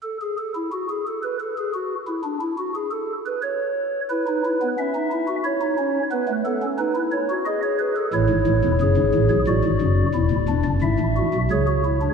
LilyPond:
<<
  \new Staff \with { instrumentName = "Pipe organ" } { \time 3/4 \key e \mixolydian \tempo 4 = 89 << { a'16 gis'16 a'16 e'16 fis'16 gis'16 a'16 b'16 a'16 gis'16 fis'8 | e'16 d'16 e'16 fis'16 gis'16 a'8 b'16 cis''4 | b'4 e''4 cis''4 | b'8 a'8 b'8 cis''8 dis''16 cis''16 b'16 a'16 |
cis''2 d''4~ | d''4 e''4 cis''4 | } \\ { r2. | r2. | e'16 dis'16 e'16 b16 cis'16 dis'16 e'16 fis'16 e'16 dis'16 cis'8 | b16 a16 b16 cis'16 dis'16 e'8 fis'16 gis'4 |
e'4 gis'4 fis'4 | e'8 d'8 e'8 fis'8 gis'16 fis'16 e'16 d'16 | } >> }
  \new Staff \with { instrumentName = "Pipe organ" } { \clef bass \time 3/4 \key e \mixolydian r2. | r2. | r2. | r2. |
<a,, a,>16 <gis,, gis,>16 <a,, a,>16 <e,, e,>16 <fis,, fis,>16 <gis,, gis,>16 <a,, a,>16 <b,, b,>16 <a,, a,>16 <gis,, gis,>16 <fis,, fis,>8 | <e,, e,>16 <d,, d,>16 <e,, e,>16 <fis,, fis,>16 <gis,, gis,>16 <a,, a,>8 <b,, b,>16 <cis, cis>4 | }
>>